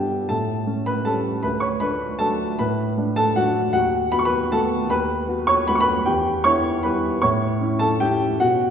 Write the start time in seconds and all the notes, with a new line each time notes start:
Already playing: G2 G3 B3 D4 E4 G4 A4 E5 G5 A5
0.29 A2 A4 A5
0.67 A3 C#4
0.86 B4 B5
1.05 G3 A3 C#4 A4 A5
1.43 D2 B4 B5
1.60 C#5 C#6
1.80 A3 D4 B4 B5
2.19 F#3 A3 D4 A4 A5
2.59 A2 B4 B5
2.97 A3 D4
3.16 A4 A5
3.36 F#3 A3 D4 F#4 F#5
3.73 D#2 F#4 F#5
4.12 B3 F#4 B5
4.19 C#6
4.25 B4 B5
4.52 A3 B3 F#4 A4 A5
4.90 D#2 B4 B5
5.28 B3 F#4
5.47 C#5 C#6
5.68 A3 B3 F#4 B5
5.75 C#6
5.80 B4 B5
6.05 E2 G4 G5
6.44 B3 E4 C#5 C#6
6.83 G3 B3 E4 B4 B5
7.22 A2 C#5 C#6
7.61 C#4 E4
7.79 A4 A5
8.00 A3 C#4 E4 G4 G5
8.40 B2 F#4 F#5